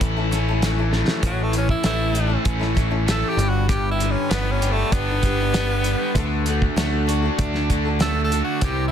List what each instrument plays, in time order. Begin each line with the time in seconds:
Already playing: overdriven electric guitar A2 E3 A3 C#4, steel-string acoustic guitar A3 C#4 E4 A4
0.01 picked electric bass A1, overdriven electric guitar E4, kick, closed hi-hat
0.17 steel-string acoustic guitar A3 C#4 E4 A4
0.31 steel-string acoustic guitar A3 C#4 E4 A4, overdriven electric guitar C#4, snare, closed hi-hat
0.48 steel-string acoustic guitar A3 C#4 E4 A4
0.62 steel-string acoustic guitar A2 E3 A3 C#4, overdriven electric guitar E3, snare, closed hi-hat
0.66 steel-string acoustic guitar E4 A4
0.78 steel-string acoustic guitar A3 C#4 E4 A4
0.90 tonewheel organ A3 B3, overdriven electric guitar A3, steel-string acoustic guitar A3, snare
0.95 tonewheel organ C4, steel-string acoustic guitar C#4 E4 A4
0.99 tonewheel organ D4 E4
1.04 tonewheel organ F4 G4, snare
1.10 tonewheel organ A4 B4
1.15 tonewheel organ C5 D5
1.21 picked electric bass A1, overdriven electric guitar A2, steel-string acoustic guitar A2, tonewheel organ A3 C#4 E4, kick, closed hi-hat
1.25 steel-string acoustic guitar E3 A3 C#4 E4 A4, tenor saxophone F#3
1.43 tenor saxophone A3
1.52 overdriven electric guitar E3, steel-string acoustic guitar A3 C#4 E4, closed hi-hat
1.56 tenor saxophone C#4, steel-string acoustic guitar A4
1.69 tenor saxophone E4, kick
1.83 picked electric bass A1, steel-string acoustic guitar A2 E3 A3 C#4 E4 A4, overdriven electric guitar A3, tenor saxophone E4, snare, closed hi-hat
2.12 steel-string acoustic guitar A3 C#4 E4 A4, overdriven electric guitar E4, closed hi-hat
2.27 steel-string acoustic guitar A3 C#4 E4 A4
2.45 picked electric bass A1, overdriven electric guitar C#4, kick, closed hi-hat
2.59 steel-string acoustic guitar A3 C#4 E4 A4, snare
2.75 overdriven electric guitar E3, steel-string acoustic guitar A3 C#4 E4 A4, kick, closed hi-hat
2.90 steel-string acoustic guitar A3 C#4 E4 A4
3.06 steel-string acoustic guitar A2 E3 A3 C#4 E4, overdriven electric guitar A3, snare, closed hi-hat
3.11 steel-string acoustic guitar A4, tenor saxophone A4
3.29 tenor saxophone G4
3.37 picked electric bass G1, overdriven electric guitar G2, steel-string acoustic guitar G3 D4 G4 B4, tonewheel organ B3 D4 G4, closed hi-hat
3.49 tenor saxophone F#4
3.68 overdriven electric guitar G2, steel-string acoustic guitar G3 D4 G4 B4, tenor saxophone G4, kick, closed hi-hat
3.91 tenor saxophone E4
3.99 overdriven electric guitar D3, steel-string acoustic guitar G3 D4, closed hi-hat
4.03 steel-string acoustic guitar G4 B4
4.11 tenor saxophone C#4
4.29 picked electric bass G1, steel-string acoustic guitar G3 D4 G4 B4, overdriven electric guitar B3, tenor saxophone B3, snare, closed hi-hat
4.52 tenor saxophone C#4
4.61 steel-string acoustic guitar G3 D4 G4, overdriven electric guitar G4, closed hi-hat
4.66 steel-string acoustic guitar B4
4.72 tenor saxophone A3
4.77 steel-string acoustic guitar D4 G4 B4
4.92 picked electric bass G1, tenor saxophone B3, overdriven electric guitar D4, kick, closed hi-hat
5.10 steel-string acoustic guitar D4 G4 B4
5.22 overdriven electric guitar G3, steel-string acoustic guitar G3 D4, kick, closed hi-hat
5.27 steel-string acoustic guitar G4 B4
5.39 steel-string acoustic guitar D4 G4 B4
5.53 steel-string acoustic guitar G3 D4 G4 B4, overdriven electric guitar B3, snare, closed hi-hat
5.84 steel-string acoustic guitar G3 D4 G4 B4, overdriven electric guitar G3, closed hi-hat
6.15 picked electric bass D2, overdriven electric guitar D3, steel-string acoustic guitar D3 A3 D4 F#4 A4, tonewheel organ A3 D4 F#4, kick, closed hi-hat
6.46 steel-string acoustic guitar A3 D4 F#4 A4, overdriven electric guitar A3, closed hi-hat
6.62 kick
6.76 picked electric bass D2, steel-string acoustic guitar D3 A3 D4 F#4 A4, overdriven electric guitar A3, snare, closed hi-hat
7.07 steel-string acoustic guitar A3 D4 F#4 A4, overdriven electric guitar F#4, closed hi-hat
7.22 steel-string acoustic guitar D4 F#4 A4
7.38 picked electric bass D2, overdriven electric guitar D4, kick, closed hi-hat
7.54 steel-string acoustic guitar D4 F#4 A4, snare
7.70 overdriven electric guitar D3, steel-string acoustic guitar A3 D4 F#4 A4, kick, closed hi-hat
7.85 steel-string acoustic guitar D4 F#4 A4
7.99 steel-string acoustic guitar D3 A3 D4 F#4 A4, overdriven electric guitar A3, tenor saxophone A4, snare, closed hi-hat
8.24 tenor saxophone A4
8.31 overdriven electric guitar D3, steel-string acoustic guitar A3 D4 F#4 A4, closed hi-hat
8.44 tenor saxophone F#4
8.60 picked electric bass C2, steel-string acoustic guitar C3 E3 G3 C4 E4 C5, overdriven electric guitar C3, tonewheel organ G3 C4 E4, kick, closed hi-hat
8.65 tenor saxophone G4
8.88 tenor saxophone E4